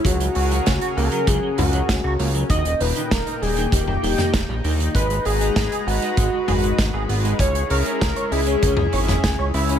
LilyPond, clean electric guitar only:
\new Staff \with { instrumentName = "Clean electric guitar" } { \time 4/4 \key gis \minor \tempo 4 = 98 fis16 fis16 fis'16 fis16 cis'16 fis'16 ais16 fis16 fis16 fis16 fis'16 fis16 cis'16 fis'16 ais16 fis16 | dis16 r16 dis'16 dis16 ais16 dis'16 g16 dis16 dis16 dis16 dis16 dis16 dis'16 g16 dis16 dis16 | gis16 gis16 gis'16 gis16 dis'16 gis'16 b16 gis16 gis16 gis16 gis'16 gis16 dis'16 gis'16 b16 gis16 | cis'16 cis'16 cis''16 cis'16 gis'16 cis''16 e'16 cis'16 cis'16 cis'16 cis''16 cis'16 gis'16 cis''16 e'16 cis'16 | }